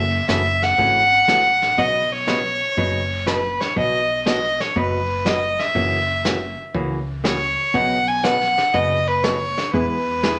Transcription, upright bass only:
Already playing: F#1
0.29 F#1
0.78 G#1
1.28 A1
1.78 B1
2.77 F#1
3.77 B1
4.76 F#1
5.75 F#1
6.74 C#2
7.74 B1
8.74 F#1
9.74 E2

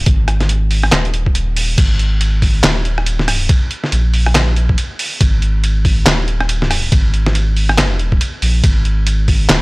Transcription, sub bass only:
0.07 G#1
0.92 D#1
1.78 G#1
2.64 D#1
3.92 A#1
5.21 G#1
6.06 D#1
6.92 G#1
8.42 A#1
8.64 G#1
9.49 D#1

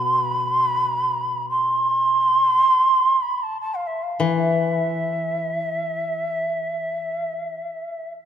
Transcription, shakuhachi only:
Already playing: B5
0.03 C6
0.19 B5
0.48 C6
0.65 B5
1.49 C6
3.22 B5
3.43 A5
3.60 A5
3.74 F5
3.86 E5
4.03 F5
4.19 E5

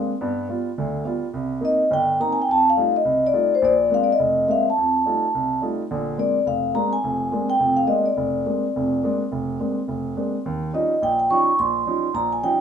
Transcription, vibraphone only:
1.65 D#5
1.93 G5
2.21 A#5
2.33 G#5
2.42 G5
2.51 A5
2.70 F5
2.96 D#5
3.27 D5
3.55 C5
3.65 D5
3.94 F5
4.04 D5
4.12 D#5
4.48 E5 F5
4.70 A5
6.19 D5
6.47 F5
6.75 A#5
6.93 G#5
7.50 G5
7.77 F5
7.87 D#5
8.06 D5
10.75 D#5
11.03 G5
11.19 G5
11.31 C#6
11.59 C6
12.15 A#5
12.33 G#5
12.44 G5

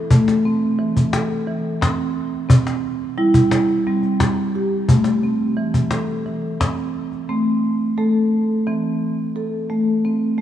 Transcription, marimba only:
Already playing: A4
0.11 A3
0.45 C4
0.79 E3
1.14 A4
1.47 E3
1.82 C4
2.49 C4
3.18 G3 E4
3.87 G3 C4
4.55 G4
4.89 A3
5.23 C4
5.57 E3
5.92 A4
6.26 E3
6.60 C4
7.29 A3 C4
7.98 A3 A4
8.67 E3 C4
9.36 A4
9.70 A3
10.05 C4
10.38 A3

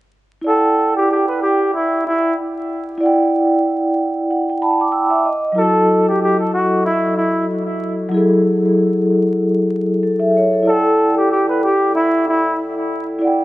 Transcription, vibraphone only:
0.42 E4 D5
0.47 F#5 G5
2.98 E4 D5
3.03 F#5 G5
4.30 F#5
4.49 G5
4.62 A5 B5
4.81 D6
4.92 G5 E6
5.10 E5 D6
5.25 D#5
5.52 F#3 E4
5.58 F#4 A4
8.09 F#3 E4
8.14 G#4 A4
10.03 A4
10.20 E5
10.37 C#5
10.53 A4
10.63 E4 D5
10.68 F#5 G5
13.19 E4 D5
13.24 F#5 G5

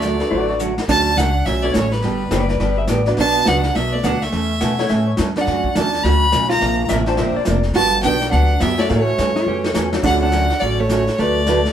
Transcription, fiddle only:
Already playing: D5
0.89 A5
1.17 F#5
1.46 E5
1.63 D5
1.73 C#5
1.92 B4
3.20 A5
3.48 F#5
3.76 E5
3.93 D5
4.04 F#5
4.22 E5
5.38 F#5
5.76 A5
6.03 B5
6.50 A#5
7.75 A5
8.03 G5
8.32 F#5
8.61 E5
8.80 D5
8.89 D5
9.00 C#5
10.05 F#5
10.22 F#5
10.61 D5
10.79 C#5
11.20 D5

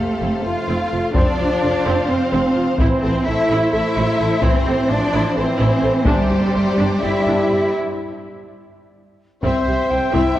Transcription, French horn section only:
Already playing: C3
0.43 A3
1.13 F3
2.09 F3
2.78 E3
3.25 A3
3.73 A3
4.42 E3
4.89 F3
5.36 E3
6.06 C3
7.01 G3
9.43 C4
10.13 E4
10.36 D4

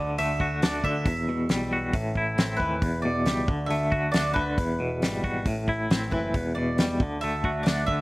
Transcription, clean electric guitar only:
Already playing: D3
0.19 A3
0.41 F#4
0.64 D4
0.85 D3
1.07 E2
1.29 B2
1.50 G3
1.73 F#4
1.94 A2
2.17 E4
2.39 C4
2.62 E3
2.84 E2
3.05 B2
3.27 G3
3.48 D3
3.70 A3
3.92 F#4
4.14 D4
4.35 D3
4.60 E2
4.80 B2
5.03 G3
5.24 F#4
5.47 A2
5.69 E4
5.92 C4
6.13 E3
6.35 E2
6.58 B2
6.80 G3
7.02 D3
7.24 A3
7.45 F#4
7.67 D4
7.88 D3

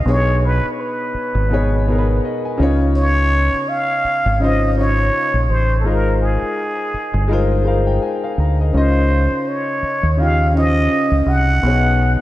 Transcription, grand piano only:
0.04 B2 B3 D4 G#4
0.09 C#5
0.14 D#4
1.49 B2 B3 D#4 G#4
1.54 C#5
1.87 B2 B3 D#4 G#4
1.91 A#4
1.98 B4
2.25 D#5
2.45 G#5
2.57 C#3 C#4 D#4 F4
2.63 C#5
4.40 C#3 C#4 D#4 F4
4.44 C5
4.76 C#3 C#4 D#4 F4
4.81 C#5
5.84 G#3 D#4 F4 A#4
5.89 C5
7.28 G#3 D#4 F4 A#4
7.33 C5
7.64 G#3 D#4 F4 A#4 F5
7.69 C5
7.87 G5
8.02 D#5 G#5
8.24 C5 F5
8.40 A#5
8.61 A#4 D#5
8.72 C#3 C#4 D#4
8.77 F4 D#5
10.17 C#3 C#4 D#4 F4
10.22 G4
10.54 C#3 C#4 D#4 F4
10.58 C5
11.62 B2 B3 D#4 G#4
11.67 C#5

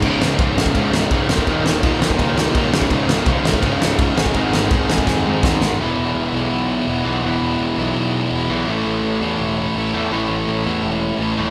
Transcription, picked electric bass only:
0.02 C#1
0.20 C#1
0.39 C#1
0.56 G#1
0.75 C#1
0.92 C#1
1.10 C#1
1.29 D#1
1.47 D#1
1.64 D#1
1.83 D#1
2.01 D#1
2.19 C#2
2.55 C#2
2.72 C#1
2.90 C#1
3.07 C#1
3.26 C#1
3.43 G#1
3.62 C#1
3.79 C#1
3.98 G1
4.16 G#1
4.34 G#1
4.53 G#1
4.71 G#1
4.90 G#1
5.07 F2
5.43 F2
5.62 G#1
5.80 E1
5.98 E1
6.15 E1
6.33 B1
6.51 B1
6.88 E1
7.06 B1
7.24 E1
7.42 E1
7.59 E1
7.78 B1
7.96 B1
8.32 E1
8.50 B1
8.68 A1
8.86 A1
9.03 A1
9.21 E2
9.39 E1
9.76 A1
9.93 E2
10.11 A1
10.29 A1
10.48 A1
10.66 E2
10.83 E1
11.19 A1
11.38 D#1

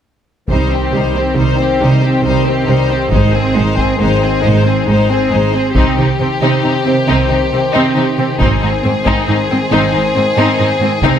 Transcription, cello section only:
0.51 C3
0.94 C3
1.37 C3
1.81 C3
2.25 C3
2.68 C3
3.12 G#2
3.55 G#2
4.00 G#2
4.44 G#2
4.87 G#2
5.33 G#2
5.76 C3
5.99 C3
6.20 C3
6.41 C3
6.64 C3
6.87 C3
7.07 C3
7.31 C3
7.53 C3
7.76 C3
7.96 C3
8.18 C3
8.40 G#2
8.63 G#2
8.85 G#2
9.06 G#2
9.28 G#2
9.51 G#2
9.72 G#2
9.95 G#2
10.16 G#2
10.37 G#2
10.59 G#2
10.80 G#2
11.03 C3

